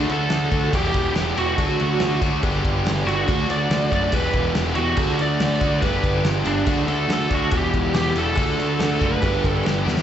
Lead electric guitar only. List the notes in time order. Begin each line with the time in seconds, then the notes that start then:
Already playing: D4
0.12 A4
0.75 G4
1.38 F#4
3.07 F#4
3.51 D5
3.93 D5
4.14 B4
4.76 F#4
5.22 D5
5.81 B4
6.47 D4
6.88 A4
7.13 A4
7.34 F#4
7.57 G4
7.95 G4
8.18 A4
9.06 B4
9.50 A4